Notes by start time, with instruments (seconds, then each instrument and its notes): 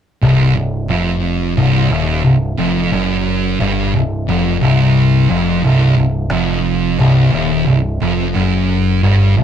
0.22 picked electric bass C1, distorted electric guitar C2
0.56 picked electric bass C1, distorted electric guitar C2
0.89 picked electric bass F1, distorted electric guitar F2
1.57 picked electric bass C1, distorted electric guitar C2
1.90 picked electric bass D#1, distorted electric guitar D#2
2.24 picked electric bass C1, distorted electric guitar C2
2.57 picked electric bass F1, distorted electric guitar F2
2.92 picked electric bass F#1, distorted electric guitar F#2
3.60 picked electric bass G1, distorted electric guitar G2
3.94 picked electric bass C1, distorted electric guitar C2
4.28 picked electric bass F1, distorted electric guitar F2
4.61 picked electric bass C1, distorted electric guitar C2
5.29 picked electric bass F1, distorted electric guitar F2
5.64 picked electric bass C1, distorted electric guitar C2
5.97 picked electric bass C1, distorted electric guitar C2
6.31 picked electric bass F1, distorted electric guitar F2
6.99 picked electric bass C1, distorted electric guitar C2
7.33 picked electric bass D#1, distorted electric guitar D#2
7.67 picked electric bass C1, distorted electric guitar C2
8.02 picked electric bass F1, distorted electric guitar F2
8.35 picked electric bass F#1, distorted electric guitar F#2
9.03 picked electric bass G1, distorted electric guitar G2
9.37 picked electric bass C1, distorted electric guitar C2